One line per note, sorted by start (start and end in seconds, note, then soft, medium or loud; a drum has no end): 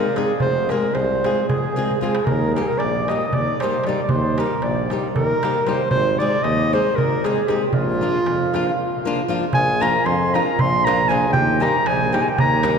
0.00 0.18 A#4 loud
0.04 darbuka tek soft
0.16 0.31 G#3 medium
0.16 0.32 C4 medium
0.16 0.32 D#4 medium
0.16 0.41 G#4 medium
0.16 0.32 G#4 medium
0.16 darbuka tek medium
0.28 darbuka tek soft
0.40 0.74 F1 medium
0.40 0.72 C5 loud
0.40 darbuka dum medium
0.56 darbuka tek soft
0.69 0.85 G#3 medium
0.69 0.86 C4 medium
0.69 0.86 F4 medium
0.69 0.86 G#4 medium
0.69 0.96 A#4 loud
0.69 darbuka tek medium
0.83 darbuka tek soft
0.94 1.28 C2 loud
0.94 1.48 C5 loud
0.94 darbuka tek medium
1.10 darbuka tek soft
1.24 1.40 G#3 medium
1.24 1.40 C4 medium
1.24 1.40 F4 soft
1.24 1.41 G#4 medium
1.24 darbuka tek medium
1.36 darbuka tek soft
1.49 1.66 F1 medium
1.49 1.97 G#4 medium
1.49 1.98 G#4 medium
1.49 darbuka dum loud
1.65 darbuka tek soft
1.76 1.91 G#3 medium
1.76 1.92 C4 medium
1.76 1.92 F4 medium
1.76 1.93 G#4 medium
1.76 darbuka dum soft
1.91 darbuka dum medium
2.01 2.16 G#3 medium
2.01 2.17 C4 medium
2.01 2.17 F4 medium
2.01 2.27 G#4 medium
2.01 2.24 G#4 medium
2.01 2.17 G#4 medium
2.01 darbuka tek medium
2.15 darbuka tek medium
2.25 2.58 D#2 loud
2.25 2.54 A#4 medium
2.25 darbuka dum loud
2.55 2.71 G3 medium
2.55 2.71 A#3 medium
2.55 2.71 D#4 soft
2.55 2.71 G4 medium
2.55 2.63 A#4 medium
2.55 2.61 A#4 medium
2.55 darbuka tek medium
2.61 2.70 G#4 medium
2.61 2.67 G#4 medium
2.68 2.80 A#4 medium
2.68 2.81 A#4 medium
2.68 darbuka tek soft
2.78 3.12 A#1 medium
2.78 3.10 D5 medium
2.78 3.09 D5 medium
2.78 darbuka tek medium
2.95 darbuka tek soft
3.08 3.24 G3 medium
3.08 3.24 A#3 soft
3.08 3.25 D#4 medium
3.08 3.25 G4 medium
3.08 3.36 D#5 medium
3.08 3.34 D#5 medium
3.08 darbuka tek medium
3.20 darbuka tek soft
3.33 3.50 D#2 medium
3.33 3.62 D5 medium
3.33 3.61 D5 medium
3.33 darbuka dum medium
3.47 darbuka tek soft
3.60 3.76 G3 medium
3.60 3.77 A#3 medium
3.60 3.77 D#4 medium
3.60 3.77 G4 medium
3.60 3.85 C5 medium
3.60 3.88 C5 medium
3.60 darbuka tek medium
3.72 darbuka tek soft
3.84 4.01 G3 medium
3.84 4.01 A#3 medium
3.84 4.01 D5 medium
3.84 4.02 D5 medium
3.84 darbuka tek medium
3.89 4.02 D#4 medium
3.89 4.01 G4 medium
3.97 darbuka tek soft
4.03 4.09 D5 soft
4.03 4.12 D5 medium
4.08 4.41 D#2 medium
4.08 4.38 C5 medium
4.08 4.41 C5 medium
4.08 darbuka dum loud
4.38 4.53 G3 medium
4.38 4.53 A#3 medium
4.38 4.54 D#4 medium
4.38 4.54 G4 medium
4.38 4.63 A#4 medium
4.38 4.65 A#4 medium
4.38 darbuka tek medium
4.51 darbuka tek soft
4.62 4.95 A#1 medium
4.62 4.92 D5 medium
4.62 darbuka tek medium
4.76 darbuka tek soft
4.90 5.06 G3 medium
4.90 5.07 A#3 medium
4.90 5.07 D#4 soft
4.90 5.07 G4 medium
4.90 darbuka tek medium
5.03 darbuka tek soft
5.15 5.32 D#2 medium
5.15 5.69 A#4 loud
5.15 5.64 A#4 medium
5.15 darbuka dum loud
5.29 darbuka tek soft
5.43 5.58 G3 medium
5.43 5.58 A#3 medium
5.43 5.58 D#4 medium
5.43 5.59 G4 medium
5.43 darbuka tek medium
5.54 darbuka tek soft
5.67 5.82 G3 medium
5.67 5.82 A#3 medium
5.67 5.83 D#4 medium
5.67 5.83 G4 medium
5.67 5.89 C5 medium
5.67 5.91 C5 medium
5.67 darbuka tek medium
5.78 darbuka tek soft
5.90 6.23 G#1 loud
5.90 6.20 C5 loud
5.90 6.18 C5 loud
5.90 darbuka dum loud
6.19 6.35 G#3 medium
6.19 6.35 C4 medium
6.19 6.36 D#4 medium
6.19 6.36 G#4 medium
6.19 6.45 D5 loud
6.19 6.45 D5 medium
6.32 darbuka tek soft
6.43 6.76 D#2 loud
6.43 6.75 D#5 loud
6.43 6.74 D#5 medium
6.43 darbuka tek medium
6.58 darbuka tek soft
6.73 6.88 G#3 medium
6.73 6.89 C4 medium
6.73 6.89 D#4 medium
6.73 6.89 G#4 medium
6.73 6.98 C5 loud
6.73 6.99 C5 loud
6.86 darbuka tek soft
6.96 7.14 G#1 medium
6.96 7.26 A#4 loud
6.96 7.25 A#4 medium
6.96 darbuka dum medium
7.12 darbuka tek soft
7.24 7.40 G#3 medium
7.24 7.40 C4 medium
7.24 7.40 D#4 medium
7.24 7.48 G#4 medium
7.24 7.50 G#4 medium
7.24 7.40 G#4 medium
7.24 darbuka tek medium
7.37 darbuka tek soft
7.47 7.63 G#3 medium
7.47 7.63 C4 medium
7.47 7.64 D#4 medium
7.47 7.64 G4 medium
7.47 7.65 G4 medium
7.47 7.64 G#4 medium
7.47 darbuka tek medium
7.61 7.72 G4 medium
7.61 darbuka tek soft
7.67 9.04 F4 loud
7.67 7.73 G4 soft
7.72 8.04 A#1 medium
7.72 9.06 F4 medium
7.72 darbuka dum medium
7.88 darbuka tek soft
8.01 8.16 F3 medium
8.01 8.17 A#3 medium
8.01 8.17 D4 medium
8.01 8.17 F4 medium
8.14 darbuka tek soft
8.26 8.58 F2 medium
8.26 darbuka tek medium
8.40 darbuka tek soft
8.54 8.69 F3 medium
8.54 8.70 A#3 medium
8.54 8.70 D4 medium
8.54 8.70 F4 medium
8.54 darbuka tek medium
8.66 darbuka tek soft
9.05 9.20 F3 medium
9.05 9.21 A#3 medium
9.05 9.21 D4 medium
9.05 9.21 F4 medium
9.28 9.44 F3 medium
9.28 9.44 A#3 medium
9.28 9.44 D4 medium
9.28 9.45 F4 medium
9.53 9.85 A#1 medium
9.53 9.80 G#4 medium
9.53 9.83 G#5 loud
9.53 darbuka dum loud
9.68 darbuka tek soft
9.80 9.96 F3 medium
9.80 9.96 A#3 medium
9.80 9.97 D4 medium
9.80 9.97 F4 medium
9.80 10.07 A#4 medium
9.80 10.07 A#5 loud
9.80 darbuka tek medium
9.94 darbuka tek soft
10.05 10.37 F2 loud
10.05 10.36 C5 medium
10.05 10.36 C6 loud
10.05 darbuka tek medium
10.21 darbuka tek soft
10.34 10.49 F3 medium
10.34 10.50 A#3 medium
10.34 10.50 D4 medium
10.34 10.50 F4 medium
10.34 10.60 A#4 medium
10.34 10.62 A#5 medium
10.34 darbuka tek medium
10.47 darbuka tek soft
10.59 11.34 A#1 medium
10.59 10.86 C5 medium
10.59 10.86 C6 loud
10.59 darbuka dum loud
10.85 11.01 F3 medium
10.85 11.01 A#3 medium
10.85 11.01 D4 medium
10.85 11.01 F4 medium
10.85 11.10 A#4 medium
10.85 11.10 A#5 loud
10.85 darbuka tek medium
10.99 darbuka tek soft
11.09 11.24 F3 medium
11.09 11.24 A#3 medium
11.09 11.25 D4 medium
11.09 11.25 F4 medium
11.09 11.34 G#4 medium
11.09 11.32 G#5 medium
11.09 darbuka tek medium
11.32 11.64 D#2 loud
11.32 11.60 G4 medium
11.32 11.64 G5 loud
11.32 darbuka dum loud
11.48 darbuka tek soft
11.60 11.76 G3 medium
11.60 11.76 A#3 medium
11.60 11.76 D#4 medium
11.60 11.77 G4 medium
11.60 11.86 A#4 medium
11.60 11.89 A#5 loud
11.60 darbuka tek medium
11.75 darbuka tek soft
11.86 12.17 A#1 medium
11.86 12.14 G#4 medium
11.86 12.16 G#5 loud
11.86 darbuka tek medium
12.01 darbuka tek soft
12.13 12.28 G3 medium
12.13 12.28 A#3 medium
12.13 12.29 D#4 medium
12.13 12.29 G4 medium
12.13 12.20 G4 medium
12.13 12.23 G5 medium
12.13 darbuka tek medium
12.21 12.27 G#4 medium
12.21 12.30 G#5 medium
12.28 12.39 G4 medium
12.28 12.39 G5 medium
12.28 darbuka tek soft
12.38 12.79 D#2 loud
12.38 12.79 A#4 medium
12.38 12.79 A#5 loud
12.38 darbuka dum loud
12.51 darbuka tek soft
12.63 12.78 G3 medium
12.63 12.79 A#3 medium
12.63 12.79 D#4 medium
12.63 12.79 G4 medium
12.63 darbuka tek medium
12.75 darbuka tek soft